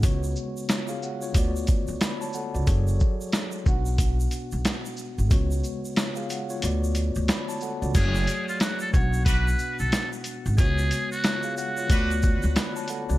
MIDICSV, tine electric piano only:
0, 0, Header, 1, 2, 480
1, 0, Start_track
1, 0, Key_signature, 3, "minor"
1, 0, Tempo, 659341
1, 27, Time_signature, 4, 2, 24, 8
1, 9597, End_track
2, 0, Start_track
2, 0, Title_t, "Tine electric piano"
2, 0, Program_c, 0, 4
2, 0, Control_c, 0, 64, 127
2, 1, Note_on_c, 0, 49, 79
2, 11, Note_on_c, 0, 56, 69
2, 21, Note_on_c, 0, 59, 65
2, 31, Note_on_c, 0, 66, 71
2, 37, Control_c, 0, 64, 0
2, 41, Note_on_c, 0, 73, 85
2, 151, Control_c, 0, 64, 127
2, 499, Note_off_c, 0, 66, 0
2, 501, Note_off_c, 0, 73, 0
2, 510, Note_on_c, 0, 73, 66
2, 514, Note_on_c, 0, 65, 55
2, 645, Note_off_c, 0, 73, 0
2, 646, Note_on_c, 0, 77, 72
2, 647, Note_off_c, 0, 65, 0
2, 651, Note_on_c, 0, 68, 66
2, 740, Note_off_c, 0, 77, 0
2, 742, Note_off_c, 0, 68, 0
2, 749, Note_on_c, 0, 78, 67
2, 884, Note_off_c, 0, 78, 0
2, 893, Note_on_c, 0, 73, 69
2, 898, Note_on_c, 0, 65, 54
2, 955, Note_off_c, 0, 49, 0
2, 960, Note_off_c, 0, 56, 0
2, 964, Note_on_c, 0, 50, 76
2, 965, Note_off_c, 0, 59, 0
2, 974, Note_on_c, 0, 57, 68
2, 983, Note_on_c, 0, 59, 67
2, 994, Note_on_c, 0, 66, 68
2, 996, Control_c, 0, 64, 0
2, 1004, Note_on_c, 0, 74, 85
2, 1104, Control_c, 0, 64, 127
2, 1119, Note_off_c, 0, 73, 0
2, 1122, Note_off_c, 0, 65, 0
2, 1458, Note_off_c, 0, 74, 0
2, 1461, Note_off_c, 0, 66, 0
2, 1462, Note_on_c, 0, 83, 69
2, 1466, Note_on_c, 0, 74, 53
2, 1600, Note_off_c, 0, 83, 0
2, 1603, Note_off_c, 0, 74, 0
2, 1609, Note_on_c, 0, 81, 76
2, 1614, Note_on_c, 0, 73, 59
2, 1702, Note_off_c, 0, 81, 0
2, 1704, Note_off_c, 0, 73, 0
2, 1708, Note_on_c, 0, 78, 68
2, 1712, Note_on_c, 0, 69, 61
2, 1844, Note_off_c, 0, 78, 0
2, 1846, Note_off_c, 0, 69, 0
2, 1850, Note_on_c, 0, 74, 67
2, 1855, Note_on_c, 0, 66, 57
2, 1916, Note_off_c, 0, 50, 0
2, 1921, Note_off_c, 0, 57, 0
2, 1926, Note_off_c, 0, 59, 0
2, 1931, Note_off_c, 0, 66, 0
2, 1934, Note_on_c, 0, 54, 75
2, 1939, Note_on_c, 0, 66, 66
2, 1944, Note_on_c, 0, 68, 69
2, 1950, Note_on_c, 0, 69, 68
2, 1954, Note_on_c, 0, 73, 81
2, 1956, Control_c, 0, 64, 0
2, 2078, Note_off_c, 0, 74, 0
2, 2081, Control_c, 0, 64, 127
2, 2648, Note_on_c, 0, 47, 78
2, 2658, Note_on_c, 0, 59, 74
2, 2661, Note_off_c, 0, 54, 0
2, 2663, Note_off_c, 0, 66, 0
2, 2666, Note_off_c, 0, 68, 0
2, 2667, Note_on_c, 0, 62, 62
2, 2668, Note_off_c, 0, 69, 0
2, 2671, Note_off_c, 0, 73, 0
2, 2675, Control_c, 0, 64, 0
2, 2677, Note_on_c, 0, 66, 66
2, 2687, Note_on_c, 0, 78, 79
2, 2821, Control_c, 0, 64, 127
2, 3833, Note_off_c, 0, 47, 0
2, 3838, Note_off_c, 0, 59, 0
2, 3841, Note_on_c, 0, 49, 76
2, 3843, Note_off_c, 0, 62, 0
2, 3848, Note_off_c, 0, 66, 0
2, 3851, Note_on_c, 0, 56, 70
2, 3853, Note_off_c, 0, 78, 0
2, 3861, Note_on_c, 0, 59, 65
2, 3871, Note_on_c, 0, 66, 71
2, 3875, Control_c, 0, 64, 0
2, 3881, Note_on_c, 0, 73, 83
2, 4015, Control_c, 0, 64, 127
2, 4339, Note_off_c, 0, 66, 0
2, 4342, Note_off_c, 0, 73, 0
2, 4351, Note_on_c, 0, 73, 63
2, 4355, Note_on_c, 0, 65, 57
2, 4485, Note_off_c, 0, 73, 0
2, 4486, Note_on_c, 0, 77, 74
2, 4487, Note_off_c, 0, 65, 0
2, 4491, Note_on_c, 0, 68, 66
2, 4580, Note_off_c, 0, 77, 0
2, 4582, Note_off_c, 0, 68, 0
2, 4590, Note_on_c, 0, 78, 69
2, 4724, Note_off_c, 0, 78, 0
2, 4733, Note_on_c, 0, 73, 66
2, 4737, Note_on_c, 0, 65, 54
2, 4794, Note_off_c, 0, 49, 0
2, 4800, Note_off_c, 0, 56, 0
2, 4803, Note_on_c, 0, 50, 75
2, 4805, Note_off_c, 0, 59, 0
2, 4813, Note_on_c, 0, 57, 67
2, 4823, Note_on_c, 0, 59, 67
2, 4833, Note_on_c, 0, 66, 68
2, 4835, Control_c, 0, 64, 0
2, 4842, Note_on_c, 0, 74, 83
2, 4959, Note_off_c, 0, 73, 0
2, 4959, Control_c, 0, 64, 127
2, 4962, Note_off_c, 0, 65, 0
2, 5299, Note_off_c, 0, 74, 0
2, 5300, Note_off_c, 0, 66, 0
2, 5303, Note_on_c, 0, 83, 68
2, 5308, Note_on_c, 0, 74, 54
2, 5441, Note_off_c, 0, 83, 0
2, 5443, Note_off_c, 0, 74, 0
2, 5450, Note_on_c, 0, 81, 77
2, 5455, Note_on_c, 0, 73, 62
2, 5542, Note_off_c, 0, 81, 0
2, 5544, Note_off_c, 0, 73, 0
2, 5549, Note_on_c, 0, 78, 67
2, 5553, Note_on_c, 0, 69, 60
2, 5684, Note_off_c, 0, 78, 0
2, 5686, Note_off_c, 0, 69, 0
2, 5689, Note_on_c, 0, 74, 66
2, 5693, Note_on_c, 0, 66, 56
2, 5755, Note_off_c, 0, 50, 0
2, 5761, Note_off_c, 0, 57, 0
2, 5766, Note_off_c, 0, 59, 0
2, 5770, Note_off_c, 0, 66, 0
2, 5773, Note_on_c, 0, 54, 81
2, 5779, Note_on_c, 0, 66, 69
2, 5784, Note_on_c, 0, 68, 69
2, 5788, Note_on_c, 0, 57, 66
2, 5793, Note_on_c, 0, 73, 81
2, 5797, Control_c, 0, 64, 0
2, 5903, Control_c, 0, 64, 127
2, 5917, Note_off_c, 0, 74, 0
2, 6487, Note_on_c, 0, 47, 76
2, 6497, Note_on_c, 0, 59, 73
2, 6500, Note_off_c, 0, 54, 0
2, 6503, Note_off_c, 0, 66, 0
2, 6505, Note_off_c, 0, 68, 0
2, 6507, Note_off_c, 0, 57, 0
2, 6507, Note_on_c, 0, 62, 62
2, 6510, Note_off_c, 0, 73, 0
2, 6516, Control_c, 0, 64, 0
2, 6517, Note_on_c, 0, 66, 68
2, 6526, Note_on_c, 0, 78, 80
2, 6663, Control_c, 0, 64, 127
2, 7673, Note_off_c, 0, 47, 0
2, 7678, Note_off_c, 0, 59, 0
2, 7681, Note_on_c, 0, 49, 80
2, 7683, Note_off_c, 0, 62, 0
2, 7688, Note_off_c, 0, 66, 0
2, 7691, Note_on_c, 0, 56, 72
2, 7693, Note_off_c, 0, 78, 0
2, 7701, Note_on_c, 0, 59, 70
2, 7710, Note_on_c, 0, 66, 72
2, 7717, Control_c, 0, 64, 0
2, 7720, Note_on_c, 0, 73, 86
2, 7835, Control_c, 0, 64, 127
2, 8179, Note_off_c, 0, 66, 0
2, 8180, Note_off_c, 0, 73, 0
2, 8189, Note_on_c, 0, 73, 64
2, 8193, Note_on_c, 0, 65, 57
2, 8324, Note_off_c, 0, 73, 0
2, 8326, Note_off_c, 0, 65, 0
2, 8326, Note_on_c, 0, 77, 73
2, 8331, Note_on_c, 0, 68, 66
2, 8420, Note_off_c, 0, 77, 0
2, 8422, Note_off_c, 0, 68, 0
2, 8431, Note_on_c, 0, 78, 71
2, 8565, Note_off_c, 0, 78, 0
2, 8574, Note_on_c, 0, 73, 69
2, 8578, Note_on_c, 0, 65, 57
2, 8634, Note_off_c, 0, 49, 0
2, 8640, Note_off_c, 0, 56, 0
2, 8643, Note_on_c, 0, 50, 79
2, 8645, Note_off_c, 0, 59, 0
2, 8653, Note_on_c, 0, 57, 70
2, 8663, Note_on_c, 0, 59, 73
2, 8673, Note_on_c, 0, 66, 73
2, 8675, Control_c, 0, 64, 0
2, 8683, Note_on_c, 0, 74, 85
2, 8790, Control_c, 0, 64, 127
2, 8800, Note_off_c, 0, 73, 0
2, 8802, Note_off_c, 0, 65, 0
2, 9138, Note_off_c, 0, 74, 0
2, 9140, Note_off_c, 0, 66, 0
2, 9142, Note_on_c, 0, 83, 71
2, 9147, Note_on_c, 0, 74, 56
2, 9281, Note_off_c, 0, 83, 0
2, 9283, Note_off_c, 0, 74, 0
2, 9290, Note_on_c, 0, 81, 80
2, 9295, Note_on_c, 0, 73, 63
2, 9382, Note_off_c, 0, 81, 0
2, 9384, Note_off_c, 0, 73, 0
2, 9388, Note_on_c, 0, 78, 68
2, 9392, Note_on_c, 0, 69, 64
2, 9524, Note_off_c, 0, 78, 0
2, 9526, Note_off_c, 0, 69, 0
2, 9530, Note_on_c, 0, 74, 69
2, 9535, Note_on_c, 0, 66, 58
2, 9596, Note_off_c, 0, 50, 0
2, 9597, Note_off_c, 0, 57, 0
2, 9597, Note_off_c, 0, 59, 0
2, 9597, Note_off_c, 0, 66, 0
2, 9597, Note_off_c, 0, 74, 0
2, 9597, End_track
0, 0, End_of_file